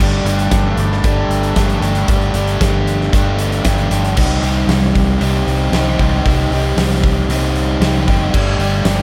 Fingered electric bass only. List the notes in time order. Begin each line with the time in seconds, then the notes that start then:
0.00 G1
0.24 G1
0.51 G1
0.77 G1
1.04 G1
1.29 G1
1.56 G1
1.81 G1
2.08 G1
2.34 G1
2.60 G1
3.13 G1
3.65 G1
3.91 G1
4.17 C2
4.42 C2
4.67 C2
4.96 C2
5.21 C2
5.47 C2
5.72 C2
5.99 C2
6.25 C2
6.51 C2
6.77 C2
7.29 C2
7.80 C2
8.08 F#1
8.33 G1
8.59 G1
8.85 G1